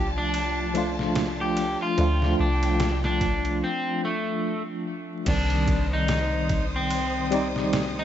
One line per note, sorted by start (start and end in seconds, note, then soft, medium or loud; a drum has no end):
0.00 1.76 C2 medium
0.00 0.70 F3 medium
0.00 0.70 A3 medium
0.00 0.71 D4 medium
0.00 0.72 F4 medium
0.00 3.58 F4 medium
0.00 3.58 D5 medium
0.00 1.94 A5 medium
0.18 0.90 D4 loud
0.34 ride medium
0.74 1.93 F3 medium
0.74 1.94 A3 medium
0.74 1.94 D4 medium
0.74 1.95 F4 loud
0.74 ride medium
0.99 snare soft
1.16 snare loud
1.16 ride medium
1.41 1.77 G4 medium
1.57 ride medium
1.82 2.35 F4 loud
1.97 2.35 D2 medium
1.97 3.62 F3 medium
1.97 3.62 A3 medium
1.97 3.63 D4 medium
1.97 3.64 F4 loud
1.97 3.60 G5 medium
1.97 ride medium
2.22 snare soft
2.39 3.62 C2 medium
2.39 2.97 D4 medium
2.63 ride medium
2.80 snare loud
2.80 ride medium
3.04 3.57 D4 medium
3.04 snare soft
3.21 kick medium
3.21 ride medium
3.45 ride soft
3.64 4.01 C4 medium
4.05 4.62 A3 medium
5.25 8.04 C2 medium
5.25 7.29 D#3 medium
5.25 7.27 G3 medium
5.25 7.28 C4 medium
5.25 5.85 D4 medium
5.25 8.04 C5 medium
5.25 7.29 D5 medium
5.25 8.04 D#6 medium
5.25 kick loud
5.25 crash medium
5.25 ride medium
5.50 ride soft
5.67 kick medium
5.67 ride medium
5.93 6.65 D#4 medium
6.08 snare loud
6.08 ride medium
6.49 kick medium
6.49 ride medium
6.76 7.47 C4 loud
6.91 ride medium
7.31 8.04 G3 loud
7.31 8.04 C4 medium
7.31 8.04 D#4 loud
7.31 8.04 D5 medium
7.31 ride medium
7.56 snare soft
7.73 snare loud
7.73 ride medium
7.99 8.04 D#4 medium